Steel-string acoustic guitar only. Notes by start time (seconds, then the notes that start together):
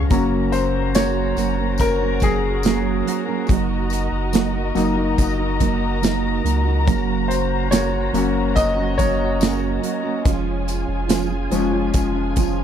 Already playing: F3 G#3 C#4 F4
0.10 F#2 C#3 F#3 A#3 C#4 F#4
0.95 F#2 C#3 F#3 A#3 C#4 F#4
1.37 F#3 A#3 C#4 F#4
1.58 F#3 A#3 C#4 F#4
2.00 F#3 A#3 C#4 F#4
2.21 F#3 A#3 F#4
2.64 F#2 C#3 F#3 A#3 C#4 F#4
3.05 F#3 A#3 C#4 F#4
3.27 F#3 A#3 C#4 F#4
3.48 F#3 A#3 D#4 F#4
4.32 F#3 A#3 D#4 F#4
4.53 A#3 D#4 F#4
4.75 F#3 A#3 D#4 F#4
4.96 A#3 D#4 F#4
5.38 A#3 D#4 F#4
5.59 F#3 A#3 D#4 F#4
6.01 F#3 A#3 D#4 F#4
6.43 F#3 A#3 D#4 F#4
6.65 A#3 D#4 F#4
6.85 F#2 C#3 F#3 A#3 C#4 F#4
7.70 F#2 C#3 F#3 A#3 C#4 F#4
7.91 F#3 A#3 C#4 F#4
8.12 F#3 A#3 C#4 F#4
8.76 F#3 A#3 C#4 F#4
8.97 F#3 A#3 C#4 F#4
9.40 F#2 C#3 F#3 A#3 C#4 F#4
9.81 F#3 A#3 C#4 F#4
10.03 F#3 A#3 C#4 F#4
10.24 F3 G#3 C#4 F4
11.08 F3 G#3 C#4 F4
11.30 G#3 C#4 F4
11.50 F3 G#3 C#4 F4
11.72 G#3 C#4 F4
12.14 G#3 C#4 F4
12.36 F3 G#3 C#4 F4